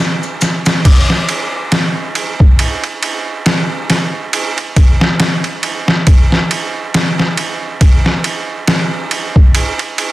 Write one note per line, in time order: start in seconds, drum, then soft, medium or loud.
0.23 maracas soft
0.41 snare soft
0.41 ride medium
0.41 maracas medium
0.66 snare loud
0.66 ride medium
0.66 maracas soft
0.85 kick loud
0.85 crash medium
0.85 ride medium
1.10 snare soft
1.29 ride medium
1.72 snare loud
1.72 ride medium
2.15 ride medium
2.40 kick loud
2.59 ride medium
2.84 ride soft
3.03 ride medium
3.46 snare loud
3.46 ride medium
3.90 snare soft
3.90 ride medium
4.33 ride medium
4.58 ride soft
4.76 kick medium
4.76 ride medium
5.01 snare medium
5.20 snare loud
5.20 ride medium
5.44 ride soft
5.63 ride medium
5.88 snare medium
6.07 kick loud
6.07 ride medium
6.32 snare soft
6.51 ride medium
6.94 snare loud
6.94 ride medium
7.19 snare soft
7.37 ride medium
7.81 kick loud
7.81 ride medium
8.06 snare soft
8.24 ride medium
8.68 snare loud
8.68 ride medium
9.11 ride medium
9.36 kick medium
9.55 ride medium
9.79 ride soft
9.98 ride medium